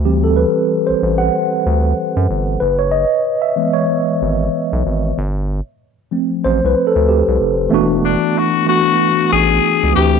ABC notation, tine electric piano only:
X:1
M:4/4
L:1/16
Q:"Swing 16ths" 1/4=94
K:Dlyd
V:1 name="Tine electric piano"
=G A B3 =c2 f6 z3 | B c ^d3 e2 c6 z3 | z8 (3=c2 B2 A2 =G2 z2 | [E,A,B,DF]6 [E,A,B,DF]8 [E,A,=CD=G]2 |]
V:2 name="Tine electric piano" clef=bass
[E,=G,=C]16 | z6 [E,G,B,]2 z8 | z6 [=F,A,=C]2 z8 | z16 |]